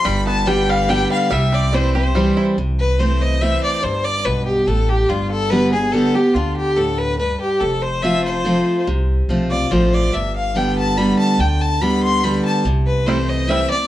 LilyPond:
<<
  \new Staff \with { instrumentName = "Fiddle" } { \time 3/4 \key c \major \tempo 4 = 143 b''8 a''8 g''8 f''8 g''8 f''8 | e''8 d''8 c''8 c''4~ c''16 r16 | r8 b'8 c''8 ees''8 e''8 d''8 | c''8 d''8 b'8 g'8 a'8 g'8 |
f'8 a'8 b'8 aes'8 a'8 g'8 | f'8 g'8 a'8 b'8 b'8 g'8 | a'8 c''8 e''8 c''4. | r4. d''8 c''8 d''8 |
e''8 f''8 g''8 a''8 b''8 a''8 | g''8 a''8 b''8 c'''8 b''8 a''8 | r8 b'8 c''8 ees''8 e''8 d''8 | }
  \new Staff \with { instrumentName = "Five-string banjo" } { \time 3/4 \key c \major g8 b8 d'8 g8 d'8 g8 | g8 c'8 e'8 g'8 g8 e'8 | r2. | r2. |
r2. | r2. | r2. | r2. |
r2. | r2. | r4 <g c' e'>8 r8 <g c' e'>8 r8 | }
  \new Staff \with { instrumentName = "Steel-string acoustic guitar" } { \time 3/4 \key c \major << { r4 <d g b g'>4 <d g b g'>4 | r4 <e g c' e'>8 <c' e'>8 <e g c' e'>4 | r4 <e a c' e'>4 <e a c' e'>4 | r2. |
r4 <d g b g'>8 <b g'>8 <d g b g'>8 <b g'>8 | r2. | r4 <f a c' f'>4 <f a c' f'>4 | r4 <f a c' f'>8 <c' f'>8 <f a c' f'>4 |
r4 <d g b g'>4 <d g b g'>4 | r4 <d g b g'>4 <d g b g'>4 | r4 <e a c' e'>4 <e a c' e'>8 <c' e'>8 | } \\ { g,2 r4 | c2 r4 | c2 r4 | g,4 b,4 a,4 |
g,2 r4 | d4 a,4 g,4 | f,2 r4 | c2 r4 |
g,2 r4 | d2 r4 | c2 r4 | } >> }
  \new Staff \with { instrumentName = "Upright bass" } { \clef bass \time 3/4 \key c \major g,,2. | c,2. | c,2. | g,,4 b,,4 a,,4 |
g,,2. | d,2. | f,,2. | c,4 b,,4 a,,4 |
g,,2. | d,2. | c,2. | }
>>